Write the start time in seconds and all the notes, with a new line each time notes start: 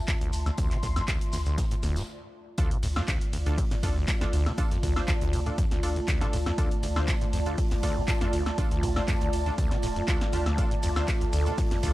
Already playing: A3 F4 D5 E5 A5
0.08 F2, kick, snare, clap, closed hi-hat, tambourine, maracas
0.21 D2 C6, closed hi-hat
0.33 D2, snare, open hi-hat, tambourine, maracas
0.46 D2, snare, closed hi-hat, high woodblock, maracas
0.58 D2, kick, closed hi-hat, tambourine, maracas
0.71 D3, snare, clap, closed hi-hat
0.83 D2 A2, kick, open hi-hat, tambourine, maracas
0.96 F2, snare, closed hi-hat, high woodblock, maracas
1.08 D2, kick, snare, clap, closed hi-hat, tambourine, maracas
1.21 closed hi-hat
1.33 D2, snare, open hi-hat, tambourine, maracas
1.46 D2, closed hi-hat, maracas
1.57 D3, kick, snare, closed hi-hat, tambourine, maracas
1.71 A2, closed hi-hat
1.83 D1 D2, snare, open hi-hat, tambourine, maracas
1.96 A2, snare, closed hi-hat, tambourine, maracas
2.58 D2 A3 D4 F4 A4 D5, kick, closed hi-hat, tambourine
2.71 D3, closed hi-hat
2.83 D2 A2, snare, open hi-hat, ride, tambourine
2.96 F2 D4 F4 C5, snare, high woodblock
3.08 D2 D5, kick, snare, clap, closed hi-hat, tambourine
3.21 closed hi-hat
3.33 D2, snare, open hi-hat, ride, tambourine
3.46 D2 D4 F4 A4, closed hi-hat
3.58 D3, kick, closed hi-hat, open hi-hat
3.71 A2, snare, closed hi-hat
3.83 D2 F2 D4 F4 A4, kick, open hi-hat, ride, tambourine
3.96 D2
4.08 kick, snare, clap, closed hi-hat, tambourine
4.17 A5
4.21 D2 D4 F4 A4, snare, closed hi-hat
4.33 D2, open hi-hat, ride, tambourine
4.46 D3, snare, closed hi-hat, high woodblock
4.58 A2 D4 F4 A4, kick, closed hi-hat, tambourine
4.71 F2, snare, closed hi-hat
4.83 D2, kick, open hi-hat, ride, tambourine
4.96 D4 F4 C5, snare, high woodblock
5.08 D2, kick, snare, clap, closed hi-hat, tambourine
5.21 D2, closed hi-hat
5.33 D2 D3, open hi-hat, ride, tambourine
5.46 A2 D4 F4 A4, closed hi-hat
5.58 F2, kick, closed hi-hat, tambourine
5.71 D2, snare, closed hi-hat
5.83 D2 D4 F4 A4, snare, open hi-hat, ride, tambourine
5.96 D2, closed hi-hat
6.08 D2, kick, snare, clap, closed hi-hat, tambourine
6.21 D3 D4 F4 A4, snare, closed hi-hat
6.33 D2 A2, open hi-hat, ride, tambourine
6.46 F2, snare, closed hi-hat, high woodblock
6.58 D2 D4 F4 A4, kick, closed hi-hat, tambourine
6.71 closed hi-hat
6.83 D2, snare, open hi-hat, ride, tambourine
6.96 D2 D4 F4 C5, snare, high woodblock
7.08 D3, kick, snare, clap, closed hi-hat, tambourine
7.21 A2, closed hi-hat
7.33 D2 F2, snare, open hi-hat, ride, tambourine
7.46 D2 D4 F4 A4, closed hi-hat
7.58 kick, closed hi-hat, open hi-hat
7.71 D2, snare, closed hi-hat
7.83 D2 D4 F4 A4, kick, open hi-hat, ride, tambourine
7.96 D3
8.08 A2, kick, snare, clap, closed hi-hat, tambourine
8.21 F2 D4 F4 A4, snare, closed hi-hat
8.33 D2, open hi-hat, ride, tambourine
8.46 snare, closed hi-hat, high woodblock
8.58 D2 D4 F4 A4, kick, closed hi-hat, tambourine
8.71 D2, snare, closed hi-hat
8.83 D2 D3, kick, open hi-hat, ride, tambourine
8.96 A2 D4 F4 C5, snare, high woodblock
9.08 F2, kick, snare, clap, closed hi-hat, tambourine
9.21 D2, closed hi-hat
9.33 D2, open hi-hat, ride, tambourine
9.46 D2 D4 F4 A4, closed hi-hat
9.58 D2, kick, closed hi-hat, tambourine
9.71 D3, snare, closed hi-hat
9.82 D1 A2, snare, open hi-hat, ride, tambourine
9.96 F2, closed hi-hat
10.08 D2 D4 F4 A4, kick, snare, clap, closed hi-hat, tambourine
10.21 snare, closed hi-hat
10.33 D2 D4 F4 G4, open hi-hat, ride, tambourine
10.46 D2, snare, closed hi-hat, high woodblock
10.58 D3 D4 F4 A4, kick, closed hi-hat, tambourine, maracas
10.71 A2, closed hi-hat
10.83 D2 F2, snare, open hi-hat, ride, tambourine, maracas
10.96 D2 D4 F4 C5, snare, high woodblock, maracas
11.08 kick, snare, clap, closed hi-hat, tambourine, maracas
11.21 D2, closed hi-hat
11.33 D2, snare, open hi-hat, ride, tambourine, maracas
11.46 D3 D4 F4 A4, closed hi-hat, maracas
11.58 A2, kick, closed hi-hat, open hi-hat, maracas
11.71 F2, snare, closed hi-hat
11.83 D2 D4 F4 A4, kick, open hi-hat, ride, tambourine, maracas